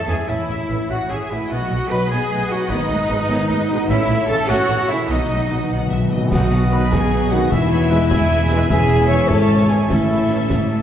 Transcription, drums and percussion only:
6.32 concert bass drum medium
6.32 snare medium
6.32 crash medium
6.93 concert bass drum medium
6.93 snare medium
7.32 snare medium
7.52 concert bass drum medium
7.52 snare medium
7.92 snare medium
8.11 concert bass drum medium
8.11 snare medium
8.51 snare medium
8.70 concert bass drum medium
8.70 snare medium
8.70 crash soft
9.30 concert bass drum medium
9.30 snare medium
9.70 snare medium
9.90 concert bass drum medium
9.90 snare medium
10.30 snare medium
10.50 concert bass drum medium
10.50 snare medium

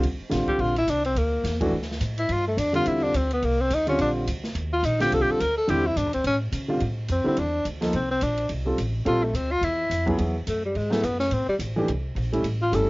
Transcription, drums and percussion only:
0.03 ride medium
0.31 snare soft
0.31 hi-hat pedal soft
0.31 ride medium
0.48 kick soft
0.48 ride soft
0.59 ride medium
0.76 ride soft
0.88 hi-hat pedal soft
0.88 ride medium
1.04 ride soft
1.16 ride medium
1.44 snare soft
1.44 hi-hat pedal medium
1.44 ride medium
1.61 kick soft
1.61 ride medium
1.82 snare soft
1.91 snare soft
2.00 hi-hat pedal medium
2.00 ride medium
2.18 ride soft
2.29 ride medium
2.58 hi-hat pedal medium
2.58 ride medium
2.74 ride soft
2.85 ride medium
3.14 hi-hat pedal medium
3.14 ride medium
3.31 ride soft
3.42 ride medium
3.70 hi-hat pedal medium
3.70 ride medium
3.87 ride soft
3.99 ride medium
4.27 hi-hat pedal soft
4.27 ride medium
4.44 snare soft
4.55 ride medium
4.83 hi-hat pedal medium
4.83 ride medium
5.00 snare soft
5.00 ride soft
5.12 ride medium
5.40 hi-hat pedal medium
5.40 ride medium
5.68 ride medium
5.97 hi-hat pedal medium
5.97 ride medium
6.13 ride soft
6.24 ride medium
6.52 hi-hat pedal medium
6.52 ride medium
6.80 ride soft
7.08 hi-hat pedal medium
7.08 ride medium
7.37 ride soft
7.65 hi-hat pedal soft
7.65 ride medium
7.82 snare soft
7.82 ride soft
7.93 ride soft
8.21 hi-hat pedal soft
8.21 ride medium
8.37 ride soft
8.49 ride medium
8.78 hi-hat pedal soft
8.78 ride medium
9.06 ride soft
9.34 hi-hat pedal soft
9.34 ride medium
9.63 ride medium
9.91 hi-hat pedal soft
9.91 ride medium
10.07 kick soft
10.07 ride soft
10.18 ride medium
10.47 hi-hat pedal soft
10.47 ride medium
10.75 ride soft
10.91 snare medium
11.03 hi-hat pedal medium
11.03 ride medium
11.19 snare soft
11.31 ride soft
11.59 hi-hat pedal medium
11.59 ride medium
11.88 ride soft
12.16 hi-hat pedal medium
12.16 ride medium
12.33 ride soft
12.44 ride medium
12.73 hi-hat pedal medium
12.73 ride medium

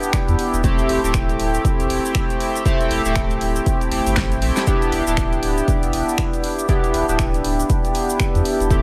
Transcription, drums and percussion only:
0.03 shaker medium
0.13 finger snap loud
0.13 kick medium
0.13 closed hi-hat medium
0.13 shaker medium
0.28 closed hi-hat medium
0.28 shaker soft
0.39 open hi-hat loud
0.54 closed hi-hat soft
0.54 shaker medium
0.64 kick loud
0.64 closed hi-hat medium
0.64 shaker medium
0.78 closed hi-hat medium
0.78 shaker soft
0.89 open hi-hat medium
1.04 closed hi-hat soft
1.04 shaker medium
1.14 finger snap loud
1.14 kick loud
1.14 closed hi-hat medium
1.14 shaker medium
1.29 closed hi-hat soft
1.29 shaker soft
1.40 open hi-hat loud
1.54 closed hi-hat soft
1.54 shaker medium
1.65 kick loud
1.65 closed hi-hat medium
1.65 shaker medium
1.80 closed hi-hat medium
1.80 shaker soft
1.90 open hi-hat loud
2.05 shaker medium
2.15 finger snap loud
2.15 kick loud
2.15 closed hi-hat medium
2.15 shaker medium
2.30 closed hi-hat medium
2.30 shaker soft
2.40 open hi-hat loud
2.55 closed hi-hat soft
2.55 shaker medium
2.65 kick loud
2.65 closed hi-hat medium
2.65 shaker medium
2.81 closed hi-hat medium
2.81 shaker soft
2.91 open hi-hat loud
3.05 closed hi-hat soft
3.05 shaker medium
3.16 finger snap loud
3.16 kick loud
3.16 closed hi-hat medium
3.16 shaker medium
3.30 closed hi-hat medium
3.30 shaker soft
3.41 open hi-hat loud
3.56 closed hi-hat soft
3.56 shaker medium
3.66 kick loud
3.66 closed hi-hat medium
3.66 shaker medium
3.81 closed hi-hat medium
3.81 shaker soft
3.92 open hi-hat loud
4.06 open hi-hat medium
4.06 shaker medium
4.16 finger snap loud
4.16 kick loud
4.16 snare loud
4.16 closed hi-hat medium
4.16 shaker medium
4.32 closed hi-hat medium
4.32 shaker soft
4.42 open hi-hat loud
4.56 snare medium
4.56 closed hi-hat soft
4.56 shaker medium
4.67 kick loud
4.67 closed hi-hat medium
4.67 shaker medium
4.82 closed hi-hat medium
4.82 shaker soft
4.92 open hi-hat loud
5.07 closed hi-hat soft
5.07 shaker medium
5.17 finger snap loud
5.17 kick loud
5.17 closed hi-hat medium
5.17 shaker medium
5.33 closed hi-hat medium
5.33 shaker soft
5.43 open hi-hat loud
5.58 closed hi-hat soft
5.58 shaker medium
5.68 kick loud
5.68 closed hi-hat medium
5.68 shaker medium
5.83 closed hi-hat medium
5.83 shaker soft
5.93 open hi-hat loud
6.09 shaker medium
6.18 finger snap loud
6.18 kick loud
6.18 closed hi-hat medium
6.18 shaker medium
6.33 closed hi-hat medium
6.33 shaker soft
6.44 open hi-hat loud
6.59 closed hi-hat soft
6.59 shaker medium
6.68 kick loud
6.68 closed hi-hat medium
6.68 shaker medium
6.84 closed hi-hat medium
6.84 shaker soft
6.94 open hi-hat loud
7.09 closed hi-hat soft
7.09 shaker medium
7.19 finger snap loud
7.19 kick loud
7.19 closed hi-hat medium
7.19 shaker medium
7.34 closed hi-hat medium
7.34 shaker soft
7.44 open hi-hat loud
7.60 closed hi-hat soft
7.60 shaker medium
7.69 kick loud
7.69 closed hi-hat medium
7.69 shaker medium
7.85 closed hi-hat medium
7.85 shaker soft
7.95 open hi-hat loud
8.10 shaker medium
8.20 finger snap loud
8.20 kick loud
8.20 closed hi-hat medium
8.20 shaker medium
8.35 closed hi-hat medium
8.35 shaker soft
8.45 open hi-hat loud
8.60 closed hi-hat soft
8.60 shaker medium
8.71 kick loud
8.71 closed hi-hat medium
8.71 shaker medium

